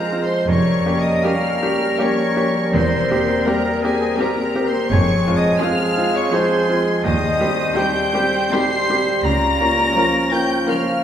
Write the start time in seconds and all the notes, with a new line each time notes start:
Already playing: F2 G#3 C4 F4 G#4 A#4 C5 A#5
0.12 G#3 C4 F4
0.23 C5 C6
0.47 F1 F2 G3 C#4 A#4 C#5 C#6
0.86 A#3 C#4 G4
0.98 D#5 D#6
1.22 G3 A#3 C#4 G4 A#4 F5 F6
1.62 A#3 C#4 G4
1.99 G3 A#3 C#4 G4 A#4 C#5 C#6
2.36 A#3 C#4 G4
2.72 E1 E2 C4 C5 C6
3.11 A#3 C4 G4
3.45 G3 A#3 C4 G4 A#4 A#5
3.82 A#3 C4 G4 G#4 G#5
4.18 G3 A#3 C4 G4 A#4 A#5
4.55 A#3 C4 G4
4.66 C5 C6
4.89 F1 F2 G#3 G#4 C#5 C#6
5.27 G#3 C4 F4
5.35 D#5 D#6
5.60 F3 G#3 C4 F4 G#4 F5 F6
5.97 G#3 C4 F4
6.15 C#5 C#6
6.32 F3 G#3 C4 F4 G#4 C5 C6
6.69 G#3 C4 F4
7.04 D#2 G3 C4 G4 C5 D#5 D#6
7.40 G3 C4 G4
7.76 G3 C4 D#4 G4 G5 G6
8.13 G3 C4 G4
8.51 G3 C4 D#4 G4 C6 C7
8.90 G3 C4 G4
9.23 C#2 C#4 F4 A#4 A#5 A#6
9.61 A#3 C#4 F4
9.96 F3 A#3 C#4 F4 A#4
10.32 A#3 C#4 F4 G5 G6
10.68 F3 A#3 C#4 F4 A#4 F5 F6